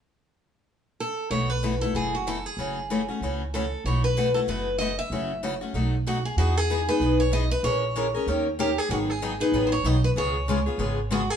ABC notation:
X:1
M:4/4
L:1/16
Q:"Swing" 1/4=190
K:Bmix
V:1 name="Steel-string acoustic guitar"
z12 A4 | c2 B4 A2 G2 F2 A2 G2- | G6 z6 A4 | c2 B4 A2 B4 d2 e2- |
e4 z8 F2 G2 | F2 G4 B4 c2 d2 B2 | c12 =G2 ^G2 | F2 G4 B3- B/2 =c/2 ^c2 d2 B2 |
c12 F2 G2 |]
V:2 name="Steel-string acoustic guitar"
z16 | [B,,E,A,EF]2 z2 [B,,E,A,EF]2 [A,EF]2 [B,,E,A,EF]2 z2 [B,,E,A,EF]2 z2 | [C,E,A,CF]2 z2 [C,E,A,CF]2 [A,CF]2 [C,E,A,CF]2 z2 [C,E,A,CF]2 z2 | [B,,E,A,EF]2 z2 [B,,E,A,EF]2 [A,EF]2 [B,,E,A,EF]2 z2 [B,,E,A,EF]2 z2 |
[C,E,A,CF]2 z2 [C,E,A,CF]2 [A,CF]2 [B,,F,A,DF]2 z2 [B,,F,A,DF]2 z2 | [E,B,DG]2 z2 [E,B,DG]2 [B,DG]2 [E,B,DG]2 z2 [E,B,DG]2 z2 | [E,G,CG^A]2 z2 [E,G,CGA]2 [CGA]2 [D,^A,C=GA]2 z2 [D,A,CGA]2 z2 | [D,F,B,DG]2 z2 [D,F,B,DG]2 [B,DG]2 [D,F,B,DG]2 z2 [D,F,B,DG]2 z2 |
[C,G,B,^EG]2 z2 [C,G,B,EG]2 [B,EG]2 [C,G,B,EG]2 z2 [C,G,B,EG]2 z2 |]
V:3 name="Upright bass" clef=bass
z16 | B,,,8 F,,,8 | F,,,8 C,,8 | B,,,8 F,,,8 |
F,,,8 B,,,8 | E,,8 B,,,8 | ^A,,,8 D,,8 | G,,,8 A,,,4 B,,,4 |
C,,8 G,,,8 |]